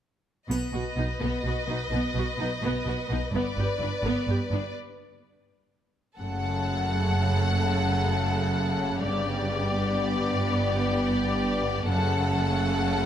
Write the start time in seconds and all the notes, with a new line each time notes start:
0.49 B1 B2 B3 B4 D#5, triangle
0.73 B1 B2 B3 F#4
0.96 B1 B2 B3 D#4
1.20 B1 B2 B3
1.43 B1 B2 B3 F#4
1.67 B1 B2 B3 D#4
1.91 B1 B2 B3
2.14 B1 B2 B3 F#4
2.38 B1 B2 B3 D#4
2.62 B1 B2 B3
2.85 B1 B2 B3 F#4
3.08 B1 B2 B3 D#4
3.32 G1 G2 B3 B4 D5
3.56 G1 G2 B3 G4
3.78 G1 G2 B3 D4
4.02 G1 G2 B3
4.27 G1 G2 B3 G4
4.50 G1 G2 B3 D4
6.19 F#1 F#2 C#3 A3 C#4 A4 F#5
9.03 G1 G2 B3 G4 D5
9.77 B3
11.88 F#1 F#2 C#3 A3 C#4 A4 F#5